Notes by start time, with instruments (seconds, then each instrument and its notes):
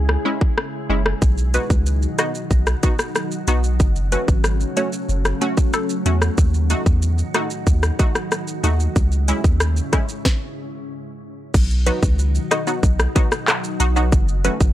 Already playing: sub bass C#2, ambient pad C#3 G#3 E4 G#4
0.09 cross-stick
0.25 synth stab G#3 C#4 E4
0.41 kick
0.58 cross-stick
0.89 sub bass F#1, synth stab G#3 C#4 E4
1.06 cross-stick
1.22 sub bass B1, ambient pad B2 D#3 F#3 D#4 F#4, kick, shaker
1.38 shaker
1.54 synth stab B3 D#4 F#4, synth pluck B4, closed hi-hat, shaker
1.70 sub bass C#2, kick, shaker
1.86 shaker
2.02 shaker
2.19 synth stab B3 D#4 F#4, synth pluck D#5, cross-stick, closed hi-hat, shaker
2.35 shaker
2.51 sub bass B1, kick, shaker
2.67 cross-stick, shaker
2.83 synth stab B3 D#4 F#4, kick, closed hi-hat, shaker
2.99 cross-stick, shaker
3.15 cross-stick, shaker
3.31 shaker
3.48 sub bass B1, synth stab B3 D#4 F#4, closed hi-hat, shaker
3.64 shaker
3.80 sub bass F#1, ambient pad C#3 A3 C#4, kick, shaker
3.96 shaker
4.12 synth stab A3 C#4 F#4, synth pluck B4, closed hi-hat, shaker
4.28 sub bass G#1, kick, shaker
4.44 cross-stick, shaker
4.60 shaker
4.77 synth stab A3 C#4 F#4, synth pluck C#5, closed hi-hat, shaker
4.93 shaker
5.09 sub bass F#1, shaker
5.25 cross-stick, shaker
5.41 synth stab A3 C#4 F#4, closed hi-hat, shaker
5.57 kick, shaker
5.73 synth pluck A4, cross-stick, shaker
5.90 shaker
6.06 sub bass E2, synth stab A3 C#4 F#4, closed hi-hat, shaker
6.22 cross-stick, shaker
6.38 sub bass D#2, ambient pad A2 D#3 D#4 F#4, kick, shaker
6.54 shaker
6.70 synth stab A3 D#4 F#4, closed hi-hat, shaker
6.86 sub bass E2, kick, shaker
7.02 shaker
7.18 shaker
7.34 synth stab A3 D#4 F#4, cross-stick, closed hi-hat, shaker
7.50 shaker
7.67 sub bass D#2, kick, shaker
7.83 cross-stick, shaker
7.99 synth stab A3 D#4 F#4, kick, closed hi-hat, shaker
8.15 cross-stick, shaker
8.31 cross-stick, shaker
8.48 shaker
8.63 sub bass D#2, synth stab A3 D#4 F#4, closed hi-hat, shaker
8.80 shaker
8.96 sub bass C#2, ambient pad G#2 C#3 G#3 C#4 E4, kick, shaker
9.12 shaker
9.28 synth stab G#3 C#4 E4, closed hi-hat, shaker
9.44 sub bass D#2, kick, shaker
9.60 cross-stick, shaker
9.77 shaker
9.92 synth stab G#3 C#4 E4, kick, cross-stick, closed hi-hat, shaker
10.09 shaker
10.25 kick, snare
11.54 sub bass B1, ambient pad B2 D#3 F#3 D#4 F#4, kick, crash, shaker
11.70 shaker
11.86 synth stab F#3 B3 D#4 F#4, synth pluck B4, closed hi-hat, shaker
12.03 sub bass C#2, kick, shaker
12.19 shaker
12.35 shaker
12.51 synth stab D#4 F#4, synth pluck D#5, cross-stick, closed hi-hat, shaker
12.67 synth stab F#3 B3 D#4 F#4, shaker
12.83 sub bass B1, kick, shaker
12.99 cross-stick, shaker
13.15 synth stab F#3 B3 D#4 F#4, kick, closed hi-hat, shaker
13.32 cross-stick, shaker
13.48 cross-stick, clap, shaker
13.64 shaker
13.80 sub bass B1, synth stab D#4 F#4, closed hi-hat, shaker
13.96 synth stab F#3 B3 D#4 F#4, shaker
14.12 sub bass F#1, ambient pad C#3 A3 C#4, kick, shaker
14.28 shaker
14.44 synth stab F#3 A3 C#4 F#4, synth pluck B4, closed hi-hat, shaker
14.61 sub bass G#1, kick, shaker